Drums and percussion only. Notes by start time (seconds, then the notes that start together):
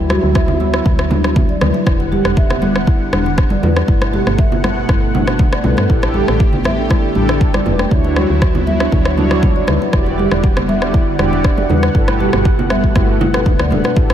0.10 cross-stick, high conga
0.35 kick, cross-stick, muted conga
0.48 low conga
0.60 muted conga, high conga
0.74 cross-stick
0.86 kick, muted conga, high conga
0.99 cross-stick
1.11 high conga, low conga
1.24 cross-stick, muted conga
1.36 kick, high conga, low conga
1.49 muted conga
1.61 cross-stick, high conga, low conga
1.74 muted conga
1.87 kick, cross-stick
2.00 muted conga
2.12 high conga
2.25 cross-stick
2.37 kick, muted conga
2.50 cross-stick, low conga
2.62 muted conga, high conga
2.76 cross-stick
2.87 kick, muted conga, high conga
3.13 cross-stick, high conga
3.26 muted conga
3.38 kick, cross-stick
3.50 muted conga, high conga
3.63 high conga, low conga
3.76 cross-stick, muted conga
3.88 kick
4.01 cross-stick, muted conga
4.13 high conga
4.27 cross-stick
4.38 kick, muted conga
4.52 low conga
4.64 cross-stick, muted conga, high conga
4.89 kick, cross-stick, muted conga, high conga
5.15 high conga, low conga
5.27 cross-stick, muted conga
5.39 kick, high conga, low conga
5.53 cross-stick, muted conga
5.64 high conga, low conga
5.77 cross-stick, muted conga
5.90 kick
6.02 cross-stick, muted conga
6.14 high conga
6.28 cross-stick
6.40 kick, muted conga
6.53 low conga
6.64 cross-stick, muted conga, high conga
6.90 kick, cross-stick, muted conga, high conga
7.15 high conga
7.29 cross-stick, muted conga
7.41 kick
7.54 cross-stick, muted conga, high conga
7.66 high conga, low conga
7.79 cross-stick, muted conga
7.91 kick
8.04 muted conga
8.16 cross-stick, high conga
8.42 kick, cross-stick, muted conga
8.55 low conga
8.67 muted conga, high conga
8.80 cross-stick
8.92 kick, muted conga, high conga
9.05 cross-stick
9.17 high conga, low conga
9.31 cross-stick, muted conga
9.42 kick, high conga, low conga
9.56 muted conga
9.67 cross-stick, high conga, low conga
9.82 muted conga
9.93 kick, cross-stick
10.06 muted conga
10.19 high conga
10.31 cross-stick
10.44 kick, muted conga
10.57 cross-stick, low conga
10.69 muted conga, high conga
10.82 cross-stick
10.94 kick, muted conga, high conga
11.19 cross-stick, high conga
11.33 muted conga
11.44 kick, cross-stick
11.58 muted conga, high conga
11.70 high conga, low conga
11.83 cross-stick, muted conga
11.95 kick
12.08 cross-stick, muted conga
12.20 high conga
12.33 cross-stick
12.45 kick, muted conga
12.59 low conga
12.70 cross-stick, muted conga, high conga
12.84 kick
12.96 kick, cross-stick, muted conga, high conga
13.21 high conga, low conga
13.34 cross-stick, muted conga
13.46 kick, high conga, low conga
13.59 cross-stick, muted conga
13.71 high conga, low conga
13.84 cross-stick, muted conga
13.96 kick
14.10 cross-stick, muted conga